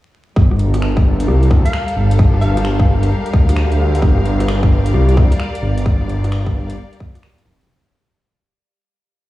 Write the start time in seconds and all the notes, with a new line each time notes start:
0.36 G1 G3, kick
0.51 cross-stick
0.58 A#4, closed hi-hat
0.66 G4 A4
0.74 cross-stick, closed hi-hat
0.82 finger snap
0.97 kick
1.17 F5, closed hi-hat
1.28 C2, cross-stick
1.43 closed hi-hat
1.51 D2, kick
1.65 F5, closed hi-hat
1.73 finger snap
1.88 closed hi-hat
1.96 G1
2.11 closed hi-hat
2.19 G1, kick
2.34 cross-stick
2.41 F5, closed hi-hat
2.57 cross-stick, closed hi-hat
2.65 finger snap
2.80 kick
3.03 closed hi-hat
3.26 closed hi-hat
3.33 D2, kick
3.49 cross-stick, closed hi-hat
3.56 finger snap
3.72 closed hi-hat
3.95 closed hi-hat
4.02 G1, kick
4.18 cross-stick
4.26 closed hi-hat
4.40 cross-stick, closed hi-hat
4.48 D5, finger snap
4.63 kick
4.86 closed hi-hat
4.94 C2, cross-stick
5.09 closed hi-hat
5.17 D2, kick
5.32 closed hi-hat
5.40 finger snap
5.55 closed hi-hat
5.62 G1
5.78 closed hi-hat
5.86 G1, kick
6.01 cross-stick
6.09 closed hi-hat
6.24 cross-stick, closed hi-hat
6.32 finger snap
6.46 kick
6.70 closed hi-hat
6.93 closed hi-hat
7.00 kick
7.15 cross-stick, closed hi-hat
7.23 finger snap
7.38 closed hi-hat
7.45 F1
7.61 closed hi-hat